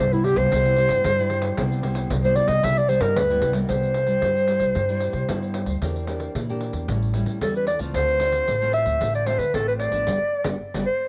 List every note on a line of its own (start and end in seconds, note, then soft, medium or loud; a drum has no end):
0.00 0.33 C2 loud
0.00 0.50 G2 medium
0.00 0.15 C5 medium
0.13 0.48 G3 medium
0.13 0.48 B3 medium
0.13 0.26 E4 medium
0.13 0.49 E4 medium
0.13 pandeiro soft
0.24 0.39 G4 medium
0.24 pandeiro medium
0.36 0.49 C2 loud
0.36 1.70 C5 medium
0.36 pandeiro medium
0.52 0.86 C2 loud
0.52 1.02 C3 medium
0.52 0.74 G3 medium
0.52 0.74 B3 medium
0.52 0.75 E4 medium
0.52 pandeiro medium
0.65 pandeiro soft
0.76 1.03 G3 medium
0.76 1.03 B3 medium
0.76 1.03 E4 medium
0.76 pandeiro medium
0.89 1.02 G2 loud
0.89 pandeiro medium
1.04 1.55 G2 medium
1.04 1.50 G2 loud
1.04 pandeiro medium
1.18 1.54 G3 medium
1.18 1.54 E4 medium
1.18 pandeiro soft
1.30 pandeiro medium
1.42 pandeiro medium
1.57 2.03 C2 loud
1.57 2.08 C3 medium
1.57 1.80 G3 medium
1.57 1.80 B3 medium
1.57 1.80 E4 medium
1.57 pandeiro medium
1.72 pandeiro soft
1.83 2.08 G3 medium
1.83 2.09 B3 medium
1.83 2.09 E4 medium
1.83 pandeiro medium
1.95 pandeiro medium
2.10 2.44 C2 loud
2.10 2.61 G2 medium
2.10 pandeiro medium
2.24 2.60 G3 medium
2.24 2.60 B3 medium
2.24 2.60 E4 medium
2.24 2.37 C5 medium
2.24 pandeiro soft
2.36 2.50 D5 loud
2.36 pandeiro medium
2.48 2.60 C2 loud
2.48 2.65 D#5 medium
2.48 pandeiro medium
2.63 2.97 C2 loud
2.63 3.14 C3 medium
2.63 2.79 G3 medium
2.63 2.79 B3 medium
2.63 2.79 E4 medium
2.63 2.79 E5 loud
2.63 pandeiro medium
2.77 2.90 D5 medium
2.77 pandeiro soft
2.89 3.14 G3 medium
2.89 3.15 B3 soft
2.89 3.15 E4 medium
2.89 3.03 C5 medium
2.89 pandeiro medium
3.00 3.13 G2 loud
3.00 3.18 A#4 medium
3.00 pandeiro medium
3.16 3.40 D2 medium
3.16 3.67 G2 medium
3.16 3.56 B4 medium
3.16 pandeiro loud
3.30 3.52 G3 medium
3.30 3.53 B3 medium
3.30 3.53 E4 medium
3.30 pandeiro soft
3.42 3.66 C2 medium
3.42 pandeiro medium
3.53 3.91 G3 medium
3.53 3.91 B3 medium
3.53 3.91 E4 medium
3.53 pandeiro medium
3.69 4.14 C2 medium
3.69 4.20 C3 soft
3.69 5.51 C5 loud
3.69 pandeiro medium
3.83 pandeiro soft
3.94 pandeiro medium
4.07 4.44 G3 medium
4.07 4.44 E4 medium
4.07 pandeiro soft
4.22 4.56 G2 medium
4.22 4.73 G2 soft
4.22 pandeiro medium
4.37 pandeiro soft
4.48 4.84 G3 soft
4.48 4.84 E4 medium
4.48 pandeiro medium
4.60 4.72 C2 medium
4.60 pandeiro medium
4.75 5.10 G2 medium
4.75 5.26 C3 soft
4.75 pandeiro medium
4.89 5.25 G3 medium
4.89 5.25 E4 medium
4.89 pandeiro soft
5.00 pandeiro medium
5.13 5.26 C3 medium
5.13 pandeiro soft
5.28 5.79 G2 medium
5.28 5.63 G2 medium
5.28 5.63 G3 medium
5.28 5.63 B3 soft
5.28 5.63 E4 medium
5.28 pandeiro medium
5.43 pandeiro soft
5.54 pandeiro medium
5.66 5.78 D2 medium
5.66 pandeiro soft
5.82 6.27 E2 medium
5.82 6.32 E3 soft
5.82 6.04 A#3 soft
5.82 6.04 D4 soft
5.82 6.05 G4 soft
5.82 pandeiro medium
5.96 pandeiro soft
6.07 6.33 A#3 soft
6.07 6.33 D4 soft
6.07 6.33 G4 medium
6.07 pandeiro medium
6.20 pandeiro medium
6.35 6.69 A#2 medium
6.35 6.86 E3 soft
6.35 pandeiro medium
6.49 6.87 A#3 medium
6.49 6.87 D4 medium
6.49 6.87 G4 medium
6.49 pandeiro soft
6.60 pandeiro medium
6.73 6.85 E2 medium
6.73 pandeiro soft
6.88 7.22 A1 loud
6.88 7.39 A2 soft
6.88 7.10 G3 soft
6.88 7.11 C#4 soft
6.88 7.11 E4 soft
6.88 pandeiro medium
7.02 pandeiro soft
7.14 7.37 G3 soft
7.14 7.37 C#4 medium
7.14 7.37 E4 medium
7.14 pandeiro medium
7.25 7.38 A2 medium
7.25 pandeiro soft
7.41 7.75 E2 medium
7.41 7.92 E3 medium
7.41 7.66 G3 medium
7.41 7.66 C#4 medium
7.41 7.67 E4 medium
7.41 7.54 A4 medium
7.41 pandeiro medium
7.55 7.67 B4 medium
7.55 pandeiro soft
7.67 7.80 D5 medium
7.67 pandeiro medium
7.79 7.91 C#2 medium
7.79 8.16 A3 medium
7.79 8.16 C4 soft
7.79 8.16 F4 medium
7.79 pandeiro soft
7.94 8.40 D2 medium
7.94 8.45 D3 soft
7.94 8.71 C5 medium
7.94 pandeiro medium
8.08 pandeiro soft
8.20 8.45 A3 soft
8.20 8.46 C4 soft
8.20 8.46 F4 medium
8.20 pandeiro medium
8.32 pandeiro medium
8.48 8.82 A1 medium
8.48 8.98 A2 soft
8.48 pandeiro medium
8.62 9.10 A3 medium
8.62 9.11 C4 medium
8.62 9.11 F4 medium
8.62 pandeiro soft
8.73 9.11 E5 medium
8.73 pandeiro medium
8.85 8.98 D2 medium
8.85 pandeiro soft
9.01 9.35 A1 medium
9.01 9.52 D3 soft
9.01 pandeiro medium
9.15 9.28 D5 medium
9.15 pandeiro soft
9.26 9.43 A3 medium
9.26 9.43 C4 soft
9.26 9.43 F4 medium
9.26 9.40 C5 medium
9.26 pandeiro medium
9.39 9.51 D3 medium
9.39 9.56 B4 medium
9.39 pandeiro medium
9.54 9.88 A1 medium
9.54 10.05 A2 medium
9.54 9.90 A3 medium
9.54 9.90 C4 medium
9.54 9.90 F4 medium
9.54 9.68 A4 medium
9.54 pandeiro medium
9.68 9.74 B4 medium
9.68 pandeiro soft
9.79 10.56 D5 medium
9.79 pandeiro medium
9.92 10.04 A1 medium
9.92 10.07 F3 medium
9.92 10.06 B3 medium
9.92 10.07 D4 medium
9.92 pandeiro soft
10.07 10.17 G1 medium
10.07 10.16 G3 medium
10.07 10.16 B3 medium
10.07 10.16 D4 medium
10.07 pandeiro medium
10.44 10.56 G1 medium
10.44 10.55 G3 medium
10.44 10.55 B3 medium
10.44 10.55 D4 medium
10.44 pandeiro medium
10.74 10.84 G1 medium
10.74 10.83 G3 medium
10.74 10.83 B3 medium
10.74 10.83 D4 medium
10.74 pandeiro medium
10.86 11.09 C5 medium